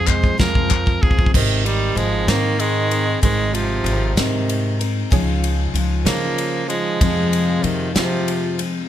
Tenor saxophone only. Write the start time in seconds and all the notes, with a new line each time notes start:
0.07 C5
0.40 A#4
1.02 G#4
1.33 D#3
1.66 G3
1.97 G#3
2.28 A#3
2.59 G#3
3.22 G#3
3.54 F3
4.18 D#3
6.05 A#3
6.69 G#3
7.63 D#3
7.94 F3